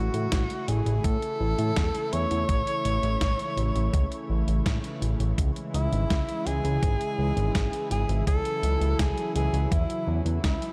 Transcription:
Already playing: C#3 E3 A3 E4 F#4
0.14 A2, closed hi-hat
0.32 A1, kick, snare, closed hi-hat
0.50 closed hi-hat
0.68 A1 G#4, closed hi-hat
0.86 A1, closed hi-hat
1.04 A2 A4, kick, closed hi-hat
1.22 closed hi-hat
1.40 A1
1.59 A2, closed hi-hat
1.76 E2, kick, snare, closed hi-hat
1.95 closed hi-hat
2.13 E2 C#5, closed hi-hat
2.31 E2, closed hi-hat
2.49 A1, kick, closed hi-hat
2.67 closed hi-hat
2.85 A1, closed hi-hat
3.03 A1, closed hi-hat
3.21 A1, kick, snare, closed hi-hat
3.39 closed hi-hat
3.57 A1, closed hi-hat
3.75 A1, closed hi-hat
3.94 C#2, kick, closed hi-hat
4.12 closed hi-hat
4.30 A1
4.48 A1, closed hi-hat
4.66 A2, kick, snare, closed hi-hat
4.84 closed hi-hat
5.02 A1, closed hi-hat
5.20 A1, closed hi-hat
5.38 C#2 G#3 E4, kick, closed hi-hat
5.56 closed hi-hat
5.74 C#2 E4, closed hi-hat
5.92 G#1, closed hi-hat
6.10 C#2, kick, snare, closed hi-hat
6.29 closed hi-hat
6.46 C#2 G#4, closed hi-hat
6.65 C#2, closed hi-hat
6.83 G#1, kick, closed hi-hat
7.01 closed hi-hat
7.19 C#2
7.37 G#1, closed hi-hat
7.55 G#1, kick, snare, closed hi-hat
7.73 closed hi-hat
7.91 G#1 G#4, closed hi-hat
8.09 G#1, closed hi-hat
8.27 C#2 F#3 A4, kick, closed hi-hat
8.45 closed hi-hat
8.63 C#2, closed hi-hat
8.81 C#2, closed hi-hat
8.99 C#2 G#4, kick, snare, closed hi-hat
9.18 closed hi-hat
9.35 C#2 G#4, closed hi-hat
9.53 C#2, closed hi-hat
9.72 E2 E4, kick, closed hi-hat
9.90 closed hi-hat
10.08 E2
10.25 E2, closed hi-hat
10.44 C#2 E4, kick, snare, closed hi-hat
10.62 closed hi-hat

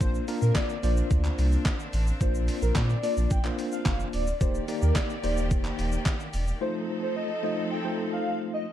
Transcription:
Already playing: A#3
0.00 A#1 A#3 C4 D4 F4 C5, kick, closed hi-hat, shaker
0.15 shaker
0.28 A#3 D4 F4 A#4, open hi-hat, shaker
0.42 A#2 A#4, shaker
0.55 D5, kick, snare, clap, closed hi-hat, shaker
0.69 shaker
0.83 A#1 A#3 D4 F4 C5 D5, open hi-hat, shaker
0.97 shaker
1.11 D2, kick, closed hi-hat, shaker
1.25 clap, shaker
1.38 C2, open hi-hat, shaker
1.52 shaker
1.65 kick, snare, clap, closed hi-hat, shaker
1.80 shaker
1.93 A1, open hi-hat, shaker
2.07 shaker
2.20 A#1 A#3 D4 F4 C5, kick, closed hi-hat, shaker
2.35 shaker
2.48 open hi-hat, shaker
2.62 A#1 A#4, shaker
2.75 A#2 D5, kick, snare, clap, closed hi-hat, shaker
2.90 shaker
3.03 A#3 D4 F4 D5, open hi-hat, shaker
3.17 A#1, shaker
3.31 A#1 G5, kick, closed hi-hat, shaker
3.44 A#3 D4 F4 C5, clap, shaker
3.59 open hi-hat, shaker
3.72 F5, shaker
3.85 F1 F5, kick, snare, clap, closed hi-hat, shaker
4.00 shaker
4.13 D1 D5, open hi-hat, shaker
4.27 shaker
4.41 D#1 D#3 A#3 D#4 G4 C5 D5, kick, closed hi-hat, shaker
4.55 shaker
4.68 A#3 D#4 G4 D5, open hi-hat, shaker
4.82 D#2 A#4, shaker
4.95 D5, kick, snare, clap, closed hi-hat, shaker
5.10 shaker
5.23 D#1 A#3 D#4 G4 C5 D5, open hi-hat, shaker
5.37 shaker
5.51 F1, kick, closed hi-hat, shaker
5.65 clap, shaker
5.79 D#1, open hi-hat, shaker
5.92 shaker
6.05 kick, snare, clap, closed hi-hat, shaker
6.20 shaker
6.33 E1, open hi-hat, shaker
6.47 shaker
6.61 F3 A3 C4 D#4 F4 A4 C5
7.03 C5
7.16 D#5
7.43 A3 D#4 F4 C5 D#5
7.71 G5
7.85 A3 D#4 F4 C5
8.13 F5
8.26 F5
8.54 D#5

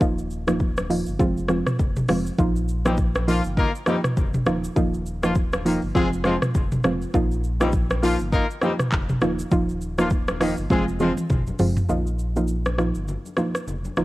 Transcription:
0.01 D#1 F3 A#3 D#4 F4, kick, shaker
0.18 shaker
0.31 shaker
0.47 F3 A#3 D#4 F4, cross-stick, high conga, shaker
0.60 kick, shaker
0.77 cross-stick, high conga, shaker
0.90 F3 A#3 D#4 F4, open hi-hat, shaker
1.06 G1, shaker
1.19 F1 F3 G#3 C4 F4, kick, low conga, shaker
1.38 shaker
1.49 F3 G#3 C4 F4, cross-stick, high conga, shaker
1.67 cross-stick, mid tom, shaker
1.79 F1, kick, low conga, shaker
1.96 mid tom, high conga, shaker
2.08 F1 F3 G#3 C4 F4, cross-stick, open hi-hat, low conga, shaker
2.27 shaker
2.38 A#1 F3 A#3 D#4 F4, kick, shaker
2.56 shaker
2.69 shaker
2.85 F3 G3 A#3 C4 D#4 F4 G4, cross-stick, high conga, shaker
2.97 kick, shaker
3.15 cross-stick, high conga, shaker
3.28 F3 A#3 D#4 F4, open hi-hat, shaker
3.44 G1, shaker
3.57 A#3 D#4 F4 A#4, kick, low conga, shaker
3.75 shaker
3.86 F3 G3 A#3 C4 D#4 F4 G4, cross-stick, high conga, shaker
4.04 cross-stick, mid tom, shaker
4.17 F1, kick, low conga, shaker
4.34 mid tom, high conga, shaker
4.46 D#1 F3 A#3 D#4 F4, cross-stick, low conga, shaker
4.64 shaker
4.76 D#1 F3 A#3 D#4 F4, kick, shaker
4.94 shaker
5.06 shaker
5.23 F3 A#3 D#4 F4, cross-stick, high conga, shaker
5.35 kick, shaker
5.53 cross-stick, high conga, shaker
5.65 D#3 F3 A#3 D#4 F4, open hi-hat, shaker
5.82 G1, shaker
5.95 F1 F3 G#3 C4 F4 G#4, kick, low conga, shaker
6.13 shaker
6.24 F3 G#3 C4 F4, cross-stick, high conga, shaker
6.42 cross-stick, mid tom, shaker
6.54 F1, kick, low conga, shaker
6.72 mid tom, high conga, shaker
6.84 F1 F3 G#3 C4 F4, cross-stick, low conga, shaker
7.02 shaker
7.14 A#1 F3 A#3 D#4 F4, kick, shaker
7.31 shaker
7.44 shaker
7.60 F3 G3 A#3 C4 D#4 F4 G4, cross-stick, high conga, shaker
7.73 kick, shaker
7.90 cross-stick, high conga, shaker
8.03 F3 A#3 D#4 F4, open hi-hat, shaker
8.19 G1, shaker
8.33 A#3 D#4 F4 A#4, kick, low conga, shaker
8.50 shaker
8.61 F3 G3 A#3 C4 D#4 F4 G4, cross-stick, high conga, shaker
8.79 cross-stick, mid tom, shaker
8.92 F1, kick, clap, low conga, shaker
9.09 mid tom, high conga, shaker
9.21 D#1 F3 A#3 D#4 F4, cross-stick, low conga, shaker
9.39 shaker
9.51 D#1 F3 A#3 D#4 F4, kick, shaker
9.69 shaker
9.81 shaker
9.98 F3 A#3 D#4 F4, cross-stick, high conga, shaker
10.10 kick, shaker
10.28 cross-stick, high conga, shaker
10.40 D#3 F3 A#3 D#4 F4, cross-stick, open hi-hat, shaker
10.57 G1, shaker
10.70 F1 F3 G#3 C4 F4 G#4, kick, high tom, low conga, shaker
10.88 shaker
11.00 F3 G#3 C4 F4, mid tom, high conga, shaker
11.17 mid tom, shaker
11.30 F1, kick, mid tom, low conga, shaker
11.47 high conga, shaker
11.59 F1 F3 G#3 C4 F4, floor tom, open hi-hat, low conga, shaker
11.77 floor tom, shaker
11.89 A#1 F3 A#3 D#4 F4, low conga, shaker
12.07 shaker
12.19 shaker
12.36 F3 A#3 D#4 F4, high conga, shaker
12.48 shaker
12.65 cross-stick, high conga, shaker
12.78 F3 A#3 D#4 F4, cross-stick, shaker
12.95 G1, shaker
13.08 low conga, shaker
13.26 high conga, shaker
13.37 F3 A#3 D#4 F4, cross-stick, high conga, shaker
13.55 cross-stick, shaker
13.67 F1, low conga, shaker
13.85 high conga, shaker
13.97 D#1 F3 A#3 D#4 F4, cross-stick, low conga, shaker

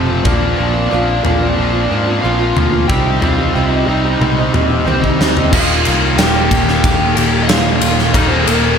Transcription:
Already playing: F1 F2 C3 F3 C4 C5
0.07 F3 A3 C4 F4
0.24 A#1 A#2 F3 A#3 C4 D4 F4 D5, kick, floor tom
0.57 A#1 A#2 F3 A#3 C4 F4
0.74 A#3 C4 F4
0.90 A#1 A#2 F3 A#3 C4
0.94 F4
1.23 A#1 A#2 F3 A#3 C4 F4 D5, floor tom
1.27 D4
1.40 A#3 C4 F4
1.57 A#1 A#2 F3 A#3
1.73 A#3 C4 F4
1.89 G#2 A#2 F3 A#3 C4 F4
2.06 A#3 C4 F4
2.22 A#1 A#2 F3 A#3 C4 F4 F5
2.39 A#3 C4 F4
2.57 D2 A#2 F3 A#3, floor tom, mid tom
2.72 A#3 C4 F4
2.87 C2 C3 G3 C4 D#4 G4 G5, kick
3.20 C2 C3 G3 C4 D#4 F4 G4 F5, floor tom
3.39 C4 D#4 G4
3.54 C2 C3 G3 C4 D#4 G4
3.72 D#5
3.87 C2 C3 G3 C4 D#4 G4 D#5
4.04 C4 D#4 G4
4.20 C2 C3 G3 C4, mid tom
4.38 C4 D#4 G4
4.54 A#2 C3 G3 C4 D#4 G4, floor tom
4.70 C4 D#4 G4
4.85 C2 C3 G3 C4 D#4 G4 C5, high tom
5.03 C4 D#4 G4 D#5, kick
5.19 D2 C3 G3 C4, snare
5.37 C4 D#4 G4, floor tom
5.52 D#1 D#2 A#2 D#3 G3 A#3 D#4 F4 F5, kick, crash
5.85 C2, ride
6.18 D#1 G4 G5, snare, ride
6.51 D#1, kick, ride
6.68 snare
6.83 D#1 G4 G5, kick, ride
7.15 D#1 G4 G5, ride
7.42 D#5
7.48 D#1 F4 F5, snare, ride
7.81 D#1, ride
7.99 snare
8.13 D#1 D#2 A#2 D#3 G3 A#3 D#4 D#5, kick, ride
8.28 C4 C5
8.44 D#1 A#3 A#4, ride

